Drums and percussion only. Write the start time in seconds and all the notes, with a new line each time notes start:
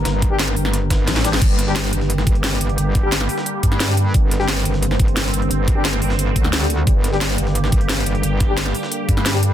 0.05 snare, closed hi-hat
0.22 kick, closed hi-hat
0.39 snare, closed hi-hat
0.48 snare
0.56 open hi-hat
0.65 snare
0.73 snare, closed hi-hat
0.90 kick, snare, closed hi-hat
1.07 snare, closed hi-hat
1.16 snare, closed hi-hat
1.25 snare, closed hi-hat
1.33 snare
1.42 kick, closed hi-hat, crash
1.59 snare, closed hi-hat
1.67 snare
1.76 snare, closed hi-hat
1.93 closed hi-hat
2.01 snare
2.10 closed hi-hat
2.18 snare
2.27 kick, closed hi-hat
2.35 closed hi-hat
2.44 snare, closed hi-hat
2.61 closed hi-hat
2.69 closed hi-hat
2.78 closed hi-hat
2.95 kick, closed hi-hat
3.12 snare, closed hi-hat
3.21 snare
3.29 closed hi-hat, open hi-hat
3.38 snare
3.46 closed hi-hat
3.63 kick, closed hi-hat
3.72 snare, closed hi-hat
3.80 snare, closed hi-hat
3.97 closed hi-hat
4.14 kick, closed hi-hat
4.31 snare, closed hi-hat
4.40 snare
4.48 snare, closed hi-hat
4.65 closed hi-hat
4.74 snare
4.82 closed hi-hat
4.91 snare
5.00 kick, closed hi-hat
5.08 closed hi-hat
5.17 snare, closed hi-hat
5.34 closed hi-hat
5.42 closed hi-hat
5.51 closed hi-hat
5.68 kick, closed hi-hat
5.85 snare, closed hi-hat
5.93 snare
6.02 closed hi-hat, open hi-hat
6.10 snare
6.19 closed hi-hat
6.36 kick, closed hi-hat
6.44 snare, closed hi-hat
6.53 snare, closed hi-hat
6.70 closed hi-hat
6.87 kick, closed hi-hat
7.04 snare, closed hi-hat
7.13 snare
7.21 snare, closed hi-hat
7.38 closed hi-hat
7.47 snare
7.55 closed hi-hat
7.64 snare
7.72 kick, closed hi-hat
7.81 closed hi-hat
7.89 snare, closed hi-hat
8.06 closed hi-hat
8.15 closed hi-hat
8.23 closed hi-hat
8.40 kick, closed hi-hat
8.57 snare, closed hi-hat
8.66 snare
8.75 closed hi-hat, open hi-hat
8.83 snare
8.92 closed hi-hat
9.09 kick, closed hi-hat
9.17 snare, closed hi-hat
9.26 snare, closed hi-hat
9.43 closed hi-hat